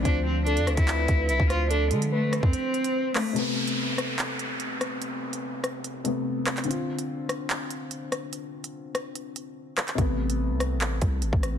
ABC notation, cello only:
X:1
M:4/4
L:1/16
Q:1/4=145
K:Am
V:1 name="Cello"
D2 C2 D3 E4- E E2 F2 | D2 ^G,2 A,3 C6- C A,2 | z16 | z16 |
z16 | z16 | z16 |]